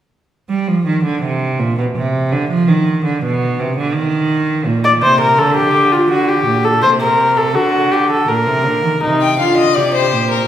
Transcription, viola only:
0, 0, Header, 1, 2, 480
1, 0, Start_track
1, 0, Key_signature, -3, "minor"
1, 0, Tempo, 730816
1, 202, Time_signature, 3, 2, 24, 8
1, 2122, Tempo, 719424
1, 5002, Tempo, 737101
1, 6908, End_track
2, 0, Start_track
2, 0, Title_t, "Viola"
2, 0, Program_c, 0, 41
2, 3198, Note_on_c, 0, 74, 80
2, 3245, Note_off_c, 0, 74, 0
2, 3318, Note_on_c, 0, 72, 79
2, 3434, Note_off_c, 0, 72, 0
2, 3438, Note_on_c, 0, 70, 81
2, 3555, Note_on_c, 0, 69, 87
2, 3565, Note_off_c, 0, 70, 0
2, 3673, Note_off_c, 0, 69, 0
2, 3677, Note_on_c, 0, 67, 84
2, 3915, Note_on_c, 0, 65, 74
2, 3925, Note_off_c, 0, 67, 0
2, 4034, Note_off_c, 0, 65, 0
2, 4038, Note_on_c, 0, 66, 79
2, 4158, Note_on_c, 0, 67, 80
2, 4168, Note_off_c, 0, 66, 0
2, 4401, Note_on_c, 0, 69, 84
2, 4411, Note_off_c, 0, 67, 0
2, 4516, Note_off_c, 0, 69, 0
2, 4520, Note_on_c, 0, 72, 83
2, 4568, Note_off_c, 0, 72, 0
2, 4641, Note_on_c, 0, 70, 77
2, 4883, Note_on_c, 0, 69, 77
2, 4893, Note_off_c, 0, 70, 0
2, 5002, Note_on_c, 0, 66, 84
2, 5012, Note_off_c, 0, 69, 0
2, 5243, Note_on_c, 0, 67, 74
2, 5253, Note_off_c, 0, 66, 0
2, 5359, Note_off_c, 0, 67, 0
2, 5363, Note_on_c, 0, 69, 72
2, 5480, Note_on_c, 0, 70, 77
2, 5490, Note_off_c, 0, 69, 0
2, 5963, Note_off_c, 0, 70, 0
2, 5967, Note_on_c, 0, 63, 68
2, 6191, Note_off_c, 0, 63, 0
2, 6211, Note_on_c, 0, 65, 56
2, 6446, Note_on_c, 0, 67, 65
2, 6455, Note_off_c, 0, 65, 0
2, 6908, Note_off_c, 0, 67, 0
2, 6908, End_track
0, 0, End_of_file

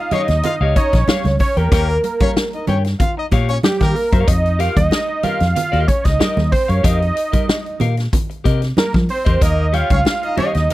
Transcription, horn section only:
0, 0, Header, 1, 2, 480
1, 0, Start_track
1, 0, Tempo, 641026
1, 1286, Time_signature, 4, 2, 24, 8
1, 8039, End_track
2, 0, Start_track
2, 0, Title_t, "Horn section"
2, 0, Program_c, 0, 61
2, 93, Note_on_c, 0, 61, 77
2, 94, Note_on_c, 0, 73, 102
2, 168, Note_off_c, 0, 61, 0
2, 169, Note_off_c, 0, 73, 0
2, 331, Note_on_c, 0, 65, 82
2, 334, Note_on_c, 0, 77, 96
2, 407, Note_off_c, 0, 65, 0
2, 408, Note_off_c, 0, 77, 0
2, 571, Note_on_c, 0, 63, 104
2, 571, Note_on_c, 0, 75, 109
2, 761, Note_off_c, 0, 63, 0
2, 761, Note_off_c, 0, 75, 0
2, 1286, Note_on_c, 0, 58, 117
2, 1287, Note_on_c, 0, 70, 127
2, 1478, Note_off_c, 0, 58, 0
2, 1478, Note_off_c, 0, 70, 0
2, 1654, Note_on_c, 0, 73, 109
2, 1655, Note_on_c, 0, 61, 99
2, 1721, Note_off_c, 0, 73, 0
2, 1722, Note_off_c, 0, 61, 0
2, 1895, Note_on_c, 0, 63, 88
2, 1896, Note_on_c, 0, 75, 84
2, 1984, Note_off_c, 0, 63, 0
2, 1984, Note_off_c, 0, 75, 0
2, 2002, Note_on_c, 0, 61, 81
2, 2004, Note_on_c, 0, 73, 86
2, 2079, Note_off_c, 0, 61, 0
2, 2080, Note_off_c, 0, 73, 0
2, 2244, Note_on_c, 0, 65, 96
2, 2247, Note_on_c, 0, 77, 102
2, 2346, Note_off_c, 0, 65, 0
2, 2347, Note_off_c, 0, 77, 0
2, 2373, Note_on_c, 0, 63, 83
2, 2373, Note_on_c, 0, 75, 92
2, 2440, Note_off_c, 0, 63, 0
2, 2440, Note_off_c, 0, 75, 0
2, 2608, Note_on_c, 0, 73, 111
2, 2610, Note_on_c, 0, 61, 103
2, 2677, Note_off_c, 0, 73, 0
2, 2678, Note_off_c, 0, 61, 0
2, 2852, Note_on_c, 0, 58, 98
2, 2852, Note_on_c, 0, 70, 108
2, 3043, Note_off_c, 0, 58, 0
2, 3044, Note_off_c, 0, 70, 0
2, 7052, Note_on_c, 0, 58, 111
2, 7053, Note_on_c, 0, 70, 114
2, 7243, Note_off_c, 0, 58, 0
2, 7244, Note_off_c, 0, 70, 0
2, 7420, Note_on_c, 0, 73, 90
2, 7421, Note_on_c, 0, 61, 87
2, 7487, Note_off_c, 0, 61, 0
2, 7487, Note_off_c, 0, 73, 0
2, 7662, Note_on_c, 0, 75, 88
2, 7664, Note_on_c, 0, 63, 76
2, 7751, Note_off_c, 0, 75, 0
2, 7752, Note_off_c, 0, 63, 0
2, 7779, Note_on_c, 0, 61, 88
2, 7780, Note_on_c, 0, 73, 89
2, 7853, Note_off_c, 0, 61, 0
2, 7854, Note_off_c, 0, 73, 0
2, 8013, Note_on_c, 0, 65, 79
2, 8015, Note_on_c, 0, 77, 95
2, 8039, Note_off_c, 0, 65, 0
2, 8039, Note_off_c, 0, 77, 0
2, 8039, End_track
0, 0, End_of_file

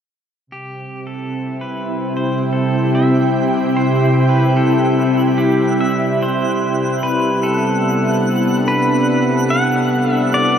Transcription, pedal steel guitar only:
0, 0, Header, 1, 2, 480
1, 0, Start_track
1, 0, Tempo, 821918
1, 281, Time_signature, 4, 2, 24, 8
1, 6182, End_track
2, 0, Start_track
2, 0, Title_t, "Pedal steel guitar"
2, 0, Program_c, 0, 26
2, 305, Note_on_c, 0, 67, 74
2, 622, Note_off_c, 0, 67, 0
2, 623, Note_on_c, 0, 69, 54
2, 941, Note_off_c, 0, 69, 0
2, 941, Note_on_c, 0, 71, 66
2, 1260, Note_off_c, 0, 71, 0
2, 1265, Note_on_c, 0, 72, 73
2, 1476, Note_on_c, 0, 69, 71
2, 1500, Note_off_c, 0, 72, 0
2, 1722, Note_on_c, 0, 76, 72
2, 1726, Note_off_c, 0, 69, 0
2, 2178, Note_off_c, 0, 76, 0
2, 2199, Note_on_c, 0, 72, 85
2, 2503, Note_off_c, 0, 72, 0
2, 2506, Note_on_c, 0, 71, 65
2, 2667, Note_on_c, 0, 69, 71
2, 2678, Note_off_c, 0, 71, 0
2, 3141, Note_on_c, 0, 67, 65
2, 3168, Note_off_c, 0, 69, 0
2, 3390, Note_on_c, 0, 76, 85
2, 3398, Note_off_c, 0, 67, 0
2, 3636, Note_on_c, 0, 72, 74
2, 3643, Note_off_c, 0, 76, 0
2, 4104, Note_off_c, 0, 72, 0
2, 4106, Note_on_c, 0, 71, 79
2, 4340, Note_on_c, 0, 69, 70
2, 4361, Note_off_c, 0, 71, 0
2, 5066, Note_off_c, 0, 69, 0
2, 5068, Note_on_c, 0, 71, 80
2, 5550, Note_on_c, 0, 78, 80
2, 5569, Note_off_c, 0, 71, 0
2, 5912, Note_off_c, 0, 78, 0
2, 5912, Note_on_c, 0, 76, 80
2, 6039, Note_on_c, 0, 74, 94
2, 6050, Note_off_c, 0, 76, 0
2, 6182, Note_off_c, 0, 74, 0
2, 6182, End_track
0, 0, End_of_file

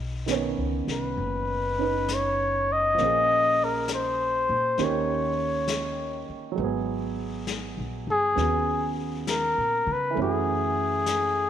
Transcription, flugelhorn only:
0, 0, Header, 1, 2, 480
1, 0, Start_track
1, 0, Key_signature, 5, "minor"
1, 0, Tempo, 900901
1, 1585, Time_signature, 4, 2, 24, 8
1, 6126, End_track
2, 0, Start_track
2, 0, Title_t, "Flugelhorn"
2, 0, Program_c, 0, 56
2, 491, Note_on_c, 0, 71, 60
2, 1139, Note_on_c, 0, 73, 69
2, 1147, Note_off_c, 0, 71, 0
2, 1452, Note_on_c, 0, 75, 79
2, 1460, Note_off_c, 0, 73, 0
2, 1939, Note_on_c, 0, 70, 65
2, 1947, Note_off_c, 0, 75, 0
2, 2082, Note_off_c, 0, 70, 0
2, 2099, Note_on_c, 0, 72, 70
2, 2577, Note_on_c, 0, 73, 56
2, 2585, Note_off_c, 0, 72, 0
2, 3363, Note_off_c, 0, 73, 0
2, 4319, Note_on_c, 0, 68, 77
2, 4770, Note_off_c, 0, 68, 0
2, 4955, Note_on_c, 0, 70, 75
2, 5288, Note_on_c, 0, 71, 67
2, 5295, Note_off_c, 0, 70, 0
2, 5433, Note_off_c, 0, 71, 0
2, 5444, Note_on_c, 0, 68, 75
2, 6126, Note_off_c, 0, 68, 0
2, 6126, End_track
0, 0, End_of_file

